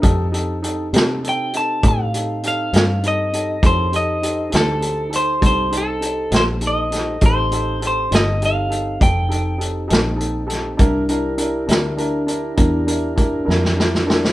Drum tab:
HH |x-x-x-x-x-x-x-x-x-x-x-x-|x-x-x-x-x-x-x-x-x-x-x-x-|x-x-x-x-x-x-x-x-x-x-x-x-|x-x-x-x-x-x-x-x-x-------|
SD |------o-----------o-----|------o-----------o---o-|------o-----------o---o-|------o-----------oooooo|
BD |o-----------o-----------|o-----------o-----------|o-----------o-----------|o-----------o---o-------|